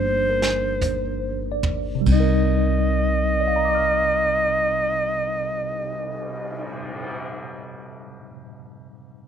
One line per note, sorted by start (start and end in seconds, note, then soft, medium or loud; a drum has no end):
0.00 2.03 G1 medium
0.00 2.06 F3 soft
0.00 2.07 A#3 soft
0.00 2.09 D4 soft
0.00 2.08 D#4 soft
0.00 2.09 G4 soft
0.00 1.61 C5 medium
0.30 1.11 A#4 soft
0.42 snare soft
0.81 1.81 C5 soft
0.81 floor tom soft
0.81 hi-hat pedal soft
1.52 2.41 D5 soft
1.63 floor tom medium
1.95 6.64 C3 soft
2.01 6.70 G3 soft
2.06 6.71 C2 medium
2.06 6.76 C4 soft
2.06 kick soft
2.06 ride soft
2.12 6.83 D#4 soft
2.12 6.76 D#5 medium
2.20 6.89 A#4 soft
2.94 cymbal swell soft
3.40 8.05 D5 soft
3.48 8.12 F5 soft
3.56 8.21 A#5 soft
3.65 8.30 D6 soft
3.75 8.40 F6 soft